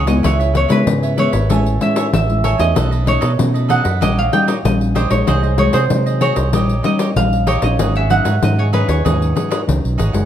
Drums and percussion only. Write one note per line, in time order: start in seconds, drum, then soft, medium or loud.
0.07 pandeiro medium
0.24 pandeiro medium
0.41 pandeiro soft
0.55 pandeiro medium
0.70 pandeiro medium
0.87 pandeiro medium
1.03 pandeiro soft
1.18 pandeiro medium
1.33 pandeiro medium
1.50 pandeiro medium
1.66 pandeiro soft
1.81 pandeiro medium
1.96 pandeiro medium
2.13 pandeiro medium
2.30 pandeiro soft
2.44 pandeiro medium
2.60 pandeiro medium
2.76 pandeiro medium
2.92 pandeiro soft
3.07 pandeiro medium
3.22 pandeiro medium
3.39 pandeiro medium
3.55 pandeiro soft
3.70 pandeiro medium
3.85 pandeiro medium
4.02 pandeiro medium
4.18 pandeiro soft
4.33 pandeiro medium
4.48 pandeiro medium
4.65 pandeiro medium
4.81 pandeiro soft
4.96 pandeiro medium
5.10 pandeiro medium
5.27 pandeiro medium
5.44 pandeiro soft
5.58 pandeiro medium
5.73 pandeiro medium
5.90 pandeiro medium
6.07 pandeiro soft
6.21 pandeiro medium
6.36 pandeiro medium
6.53 pandeiro medium
6.69 pandeiro soft
6.84 pandeiro medium
6.99 pandeiro medium
7.16 pandeiro medium
7.33 pandeiro soft
7.47 pandeiro medium
7.62 pandeiro medium
7.79 pandeiro medium
7.96 pandeiro soft
8.10 pandeiro medium
8.25 pandeiro medium
8.43 pandeiro medium
8.59 pandeiro soft
8.73 pandeiro medium
8.89 pandeiro medium
9.06 pandeiro medium
9.22 pandeiro soft
9.37 pandeiro medium
9.52 pandeiro medium
9.69 pandeiro medium
9.85 pandeiro soft
9.99 pandeiro medium
10.14 pandeiro medium